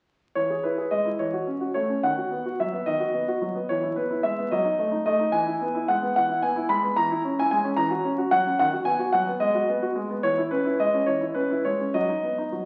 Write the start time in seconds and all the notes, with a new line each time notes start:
0.35 E3 C#5
0.50 G#4
0.63 E4 B4
0.78 G#4
0.91 G#3 D#5
1.05 E4
1.19 E3 C#5
1.33 F#4
1.47 C#4
1.61 F#4
1.74 A3 C#5
1.89 C#4
2.03 D#3 F#5
2.18 F#4
2.31 B3
2.46 F#4
2.60 F#3 E5
2.73 B3
2.86 D#3 D#5
3.00 F#4
3.14 B3
3.28 F#4
3.41 F#3
3.55 B3
3.69 E3 C#5
3.83 E4
3.96 B3 B4
4.11 E4
4.23 G#3 E5
4.39 B3
4.51 F#3 D#5
4.64 D#4
4.79 A3
4.91 D#4
5.06 A3 D#5
5.19 D#4
5.32 E3 G#5
5.47 E4
5.61 B3
5.75 E4
5.88 G#3 F#5
6.02 B3
6.16 E3 F#5
6.29 E4
6.43 B3 G#5
6.56 E4
6.69 G#3 B5
6.83 B3
6.96 E3 A#5
7.11 E4
7.25 C#4
7.39 E4 G#5
7.51 G#3 G#5
7.64 C#4
7.77 E3 A#5
7.91 F#4
8.04 C#4
8.18 F#4
8.31 F#3 F#5
8.46 C#4
8.59 D#3 F#5
8.73 F#4
8.85 B3 G#5
8.99 F#4
9.13 F#3 F#5
9.27 B3
9.40 G#3 D#5
9.55 F#4
9.69 B3
9.82 F#4
9.96 G#3
10.10 B3
10.23 E3 C#5
10.38 E4
10.51 C#4 B4
10.65 E4
10.79 G#3 D#5
10.94 C#4
11.06 E3 C#5
11.21 E4
11.34 C#4 B4
11.51 E4
11.65 G#3 C#5
11.80 C#4
11.94 F#3 D#5
12.09 D#4
12.23 B3
12.38 D#4
12.52 F#3